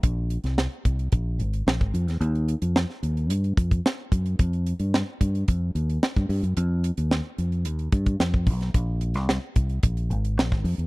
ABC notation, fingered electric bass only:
X:1
M:4/4
L:1/16
Q:1/4=110
K:Ebmix
V:1 name="Fingered electric bass" clef=bass
B,,,3 C,,2 z C,,2 B,,,2 A,,,2 B,,, A,,, F,, =E,, | E,,3 F,,2 z E,,2 G,,2 F,,2 z2 _G,,2 | F,,3 G,,2 z G,,2 F,,2 E,,2 z G,, G,, _G,, | F,,3 E,,2 z F,,2 E,,2 G,,2 F,,2 =B,,,2 |
B,,,3 C,,2 z C,,2 B,,,2 A,,,2 B,,, A,,, F,, =E,, |]